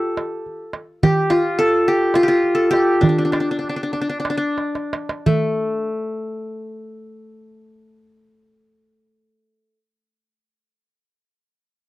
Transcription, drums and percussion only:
0, 0, Header, 1, 2, 480
1, 0, Start_track
1, 0, Tempo, 562324
1, 871, Time_signature, 7, 3, 24, 8
1, 2322, Tempo, 604839
1, 3282, Tempo, 643087
1, 3762, Tempo, 692042
1, 8836, End_track
2, 0, Start_track
2, 0, Title_t, "Darbuka"
2, 148, Note_on_c, 9, 63, 67
2, 233, Note_off_c, 9, 63, 0
2, 395, Note_on_c, 9, 62, 22
2, 480, Note_off_c, 9, 62, 0
2, 626, Note_on_c, 9, 63, 59
2, 711, Note_off_c, 9, 63, 0
2, 881, Note_on_c, 9, 64, 94
2, 966, Note_off_c, 9, 64, 0
2, 1116, Note_on_c, 9, 63, 70
2, 1202, Note_off_c, 9, 63, 0
2, 1599, Note_on_c, 9, 62, 24
2, 1684, Note_off_c, 9, 62, 0
2, 1827, Note_on_c, 9, 63, 71
2, 1912, Note_off_c, 9, 63, 0
2, 2079, Note_on_c, 9, 62, 27
2, 2164, Note_off_c, 9, 62, 0
2, 2331, Note_on_c, 9, 63, 61
2, 2411, Note_off_c, 9, 63, 0
2, 2568, Note_on_c, 9, 64, 81
2, 2648, Note_off_c, 9, 64, 0
2, 2808, Note_on_c, 9, 63, 82
2, 2888, Note_off_c, 9, 63, 0
2, 3052, Note_on_c, 9, 62, 27
2, 3131, Note_off_c, 9, 62, 0
2, 3294, Note_on_c, 9, 62, 27
2, 3368, Note_off_c, 9, 62, 0
2, 3521, Note_on_c, 9, 63, 73
2, 3596, Note_off_c, 9, 63, 0
2, 3765, Note_on_c, 9, 63, 51
2, 3834, Note_off_c, 9, 63, 0
2, 3887, Note_on_c, 9, 62, 67
2, 3956, Note_off_c, 9, 62, 0
2, 4010, Note_on_c, 9, 63, 72
2, 4079, Note_off_c, 9, 63, 0
2, 4123, Note_on_c, 9, 62, 90
2, 4192, Note_off_c, 9, 62, 0
2, 4241, Note_on_c, 9, 64, 73
2, 4311, Note_off_c, 9, 64, 0
2, 8836, End_track
0, 0, End_of_file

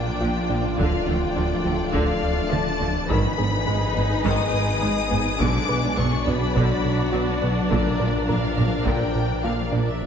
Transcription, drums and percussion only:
0, 0, Header, 1, 2, 480
1, 0, Start_track
1, 0, Tempo, 576923
1, 657, Time_signature, 4, 2, 24, 8
1, 8373, End_track
2, 0, Start_track
2, 0, Title_t, "Taiko and cinematic ensemble drums"
2, 664, Note_on_c, 9, 41, 91
2, 747, Note_off_c, 9, 41, 0
2, 1619, Note_on_c, 9, 41, 70
2, 1703, Note_off_c, 9, 41, 0
2, 2579, Note_on_c, 9, 41, 93
2, 2662, Note_off_c, 9, 41, 0
2, 3536, Note_on_c, 9, 41, 74
2, 3620, Note_off_c, 9, 41, 0
2, 4495, Note_on_c, 9, 41, 114
2, 4578, Note_off_c, 9, 41, 0
2, 4980, Note_on_c, 9, 45, 59
2, 5063, Note_off_c, 9, 45, 0
2, 5223, Note_on_c, 9, 45, 50
2, 5306, Note_off_c, 9, 45, 0
2, 5466, Note_on_c, 9, 41, 82
2, 5549, Note_off_c, 9, 41, 0
2, 6423, Note_on_c, 9, 41, 109
2, 6506, Note_off_c, 9, 41, 0
2, 6904, Note_on_c, 9, 45, 54
2, 6987, Note_off_c, 9, 45, 0
2, 7137, Note_on_c, 9, 45, 49
2, 7220, Note_off_c, 9, 45, 0
2, 7375, Note_on_c, 9, 41, 72
2, 7459, Note_off_c, 9, 41, 0
2, 8373, End_track
0, 0, End_of_file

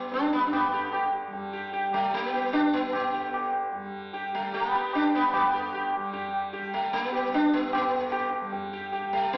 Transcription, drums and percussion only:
0, 0, Header, 1, 2, 480
1, 0, Start_track
1, 0, Tempo, 399734
1, 635, Time_signature, 3, 2, 24, 8
1, 11254, End_track
2, 0, Start_track
2, 0, Title_t, "Tabla"
2, 144, Note_on_c, 9, 62, 74
2, 264, Note_off_c, 9, 62, 0
2, 269, Note_on_c, 9, 62, 50
2, 387, Note_on_c, 9, 37, 52
2, 389, Note_off_c, 9, 62, 0
2, 507, Note_off_c, 9, 37, 0
2, 519, Note_on_c, 9, 62, 51
2, 635, Note_on_c, 9, 60, 86
2, 635, Note_on_c, 9, 64, 78
2, 639, Note_off_c, 9, 62, 0
2, 755, Note_off_c, 9, 60, 0
2, 755, Note_off_c, 9, 64, 0
2, 1118, Note_on_c, 9, 60, 68
2, 1238, Note_off_c, 9, 60, 0
2, 1603, Note_on_c, 9, 63, 67
2, 1603, Note_on_c, 9, 64, 60
2, 1723, Note_off_c, 9, 63, 0
2, 1723, Note_off_c, 9, 64, 0
2, 2077, Note_on_c, 9, 63, 69
2, 2197, Note_off_c, 9, 63, 0
2, 2318, Note_on_c, 9, 60, 52
2, 2438, Note_off_c, 9, 60, 0
2, 2558, Note_on_c, 9, 63, 70
2, 2678, Note_off_c, 9, 63, 0
2, 2791, Note_on_c, 9, 60, 53
2, 2911, Note_off_c, 9, 60, 0
2, 3044, Note_on_c, 9, 60, 70
2, 3044, Note_on_c, 9, 64, 62
2, 3164, Note_off_c, 9, 60, 0
2, 3164, Note_off_c, 9, 64, 0
2, 3283, Note_on_c, 9, 64, 48
2, 3403, Note_off_c, 9, 64, 0
2, 3520, Note_on_c, 9, 60, 82
2, 3520, Note_on_c, 9, 64, 78
2, 3640, Note_off_c, 9, 60, 0
2, 3640, Note_off_c, 9, 64, 0
2, 4011, Note_on_c, 9, 60, 72
2, 4131, Note_off_c, 9, 60, 0
2, 4240, Note_on_c, 9, 60, 47
2, 4360, Note_off_c, 9, 60, 0
2, 4478, Note_on_c, 9, 63, 66
2, 4478, Note_on_c, 9, 64, 64
2, 4598, Note_off_c, 9, 63, 0
2, 4598, Note_off_c, 9, 64, 0
2, 4964, Note_on_c, 9, 63, 68
2, 5084, Note_off_c, 9, 63, 0
2, 5439, Note_on_c, 9, 63, 73
2, 5559, Note_off_c, 9, 63, 0
2, 5681, Note_on_c, 9, 60, 49
2, 5801, Note_off_c, 9, 60, 0
2, 5923, Note_on_c, 9, 60, 68
2, 6043, Note_off_c, 9, 60, 0
2, 6409, Note_on_c, 9, 60, 97
2, 6409, Note_on_c, 9, 64, 79
2, 6529, Note_off_c, 9, 60, 0
2, 6529, Note_off_c, 9, 64, 0
2, 6881, Note_on_c, 9, 60, 72
2, 7001, Note_off_c, 9, 60, 0
2, 7131, Note_on_c, 9, 60, 52
2, 7251, Note_off_c, 9, 60, 0
2, 7374, Note_on_c, 9, 63, 77
2, 7374, Note_on_c, 9, 64, 69
2, 7494, Note_off_c, 9, 63, 0
2, 7494, Note_off_c, 9, 64, 0
2, 7613, Note_on_c, 9, 60, 57
2, 7733, Note_off_c, 9, 60, 0
2, 7853, Note_on_c, 9, 63, 72
2, 7973, Note_off_c, 9, 63, 0
2, 8326, Note_on_c, 9, 63, 71
2, 8446, Note_off_c, 9, 63, 0
2, 8573, Note_on_c, 9, 60, 52
2, 8693, Note_off_c, 9, 60, 0
2, 8804, Note_on_c, 9, 62, 78
2, 8924, Note_off_c, 9, 62, 0
2, 8927, Note_on_c, 9, 62, 61
2, 9047, Note_off_c, 9, 62, 0
2, 9048, Note_on_c, 9, 37, 57
2, 9168, Note_off_c, 9, 37, 0
2, 9168, Note_on_c, 9, 62, 53
2, 9284, Note_on_c, 9, 60, 92
2, 9284, Note_on_c, 9, 64, 85
2, 9288, Note_off_c, 9, 62, 0
2, 9404, Note_off_c, 9, 60, 0
2, 9404, Note_off_c, 9, 64, 0
2, 9751, Note_on_c, 9, 60, 72
2, 9871, Note_off_c, 9, 60, 0
2, 10003, Note_on_c, 9, 60, 50
2, 10123, Note_off_c, 9, 60, 0
2, 10239, Note_on_c, 9, 63, 77
2, 10239, Note_on_c, 9, 64, 73
2, 10359, Note_off_c, 9, 63, 0
2, 10359, Note_off_c, 9, 64, 0
2, 10718, Note_on_c, 9, 63, 77
2, 10838, Note_off_c, 9, 63, 0
2, 11184, Note_on_c, 9, 63, 76
2, 11254, Note_off_c, 9, 63, 0
2, 11254, End_track
0, 0, End_of_file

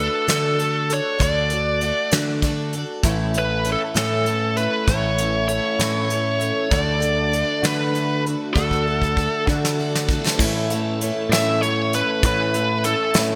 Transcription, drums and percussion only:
0, 0, Header, 1, 2, 480
1, 0, Start_track
1, 0, Key_signature, 3, "major"
1, 0, Tempo, 612870
1, 944, Time_signature, 6, 3, 24, 8
1, 10459, End_track
2, 0, Start_track
2, 0, Title_t, "Drums"
2, 221, Note_on_c, 9, 42, 76
2, 231, Note_on_c, 9, 38, 95
2, 300, Note_off_c, 9, 42, 0
2, 309, Note_off_c, 9, 38, 0
2, 465, Note_on_c, 9, 42, 54
2, 543, Note_off_c, 9, 42, 0
2, 704, Note_on_c, 9, 42, 56
2, 782, Note_off_c, 9, 42, 0
2, 941, Note_on_c, 9, 36, 94
2, 944, Note_on_c, 9, 42, 73
2, 1019, Note_off_c, 9, 36, 0
2, 1022, Note_off_c, 9, 42, 0
2, 1175, Note_on_c, 9, 42, 58
2, 1253, Note_off_c, 9, 42, 0
2, 1417, Note_on_c, 9, 42, 56
2, 1495, Note_off_c, 9, 42, 0
2, 1656, Note_on_c, 9, 42, 71
2, 1666, Note_on_c, 9, 38, 91
2, 1734, Note_off_c, 9, 42, 0
2, 1744, Note_off_c, 9, 38, 0
2, 1898, Note_on_c, 9, 36, 71
2, 1899, Note_on_c, 9, 42, 53
2, 1977, Note_off_c, 9, 36, 0
2, 1977, Note_off_c, 9, 42, 0
2, 2137, Note_on_c, 9, 42, 51
2, 2215, Note_off_c, 9, 42, 0
2, 2377, Note_on_c, 9, 36, 97
2, 2378, Note_on_c, 9, 42, 71
2, 2455, Note_off_c, 9, 36, 0
2, 2457, Note_off_c, 9, 42, 0
2, 2617, Note_on_c, 9, 42, 53
2, 2695, Note_off_c, 9, 42, 0
2, 2855, Note_on_c, 9, 42, 58
2, 2933, Note_off_c, 9, 42, 0
2, 3098, Note_on_c, 9, 42, 71
2, 3107, Note_on_c, 9, 38, 94
2, 3176, Note_off_c, 9, 42, 0
2, 3186, Note_off_c, 9, 38, 0
2, 3337, Note_on_c, 9, 42, 54
2, 3415, Note_off_c, 9, 42, 0
2, 3578, Note_on_c, 9, 42, 57
2, 3656, Note_off_c, 9, 42, 0
2, 3819, Note_on_c, 9, 36, 98
2, 3823, Note_on_c, 9, 42, 72
2, 3898, Note_off_c, 9, 36, 0
2, 3901, Note_off_c, 9, 42, 0
2, 4059, Note_on_c, 9, 42, 61
2, 4137, Note_off_c, 9, 42, 0
2, 4295, Note_on_c, 9, 42, 62
2, 4374, Note_off_c, 9, 42, 0
2, 4539, Note_on_c, 9, 42, 73
2, 4548, Note_on_c, 9, 38, 99
2, 4617, Note_off_c, 9, 42, 0
2, 4627, Note_off_c, 9, 38, 0
2, 4779, Note_on_c, 9, 42, 59
2, 4857, Note_off_c, 9, 42, 0
2, 5018, Note_on_c, 9, 42, 56
2, 5097, Note_off_c, 9, 42, 0
2, 5259, Note_on_c, 9, 36, 98
2, 5259, Note_on_c, 9, 42, 74
2, 5337, Note_off_c, 9, 36, 0
2, 5337, Note_off_c, 9, 42, 0
2, 5497, Note_on_c, 9, 42, 58
2, 5575, Note_off_c, 9, 42, 0
2, 5743, Note_on_c, 9, 42, 58
2, 5821, Note_off_c, 9, 42, 0
2, 5980, Note_on_c, 9, 42, 75
2, 5990, Note_on_c, 9, 38, 97
2, 6059, Note_off_c, 9, 42, 0
2, 6068, Note_off_c, 9, 38, 0
2, 6226, Note_on_c, 9, 42, 52
2, 6305, Note_off_c, 9, 42, 0
2, 6472, Note_on_c, 9, 42, 51
2, 6551, Note_off_c, 9, 42, 0
2, 6701, Note_on_c, 9, 36, 95
2, 6779, Note_off_c, 9, 36, 0
2, 6822, Note_on_c, 9, 36, 51
2, 6901, Note_off_c, 9, 36, 0
2, 7062, Note_on_c, 9, 36, 53
2, 7140, Note_off_c, 9, 36, 0
2, 7182, Note_on_c, 9, 36, 70
2, 7260, Note_off_c, 9, 36, 0
2, 7419, Note_on_c, 9, 36, 68
2, 7498, Note_off_c, 9, 36, 0
2, 7555, Note_on_c, 9, 38, 60
2, 7634, Note_off_c, 9, 38, 0
2, 7797, Note_on_c, 9, 38, 68
2, 7875, Note_off_c, 9, 38, 0
2, 7899, Note_on_c, 9, 36, 84
2, 7978, Note_off_c, 9, 36, 0
2, 8043, Note_on_c, 9, 38, 71
2, 8121, Note_off_c, 9, 38, 0
2, 8139, Note_on_c, 9, 36, 96
2, 8143, Note_on_c, 9, 49, 100
2, 8218, Note_off_c, 9, 36, 0
2, 8221, Note_off_c, 9, 49, 0
2, 8381, Note_on_c, 9, 42, 68
2, 8460, Note_off_c, 9, 42, 0
2, 8623, Note_on_c, 9, 42, 70
2, 8702, Note_off_c, 9, 42, 0
2, 8866, Note_on_c, 9, 42, 81
2, 8875, Note_on_c, 9, 38, 100
2, 8944, Note_off_c, 9, 42, 0
2, 8953, Note_off_c, 9, 38, 0
2, 9107, Note_on_c, 9, 42, 60
2, 9185, Note_off_c, 9, 42, 0
2, 9345, Note_on_c, 9, 42, 68
2, 9423, Note_off_c, 9, 42, 0
2, 9580, Note_on_c, 9, 36, 102
2, 9580, Note_on_c, 9, 42, 81
2, 9658, Note_off_c, 9, 36, 0
2, 9658, Note_off_c, 9, 42, 0
2, 9822, Note_on_c, 9, 42, 65
2, 9900, Note_off_c, 9, 42, 0
2, 10055, Note_on_c, 9, 42, 67
2, 10133, Note_off_c, 9, 42, 0
2, 10290, Note_on_c, 9, 42, 81
2, 10299, Note_on_c, 9, 38, 105
2, 10368, Note_off_c, 9, 42, 0
2, 10378, Note_off_c, 9, 38, 0
2, 10459, End_track
0, 0, End_of_file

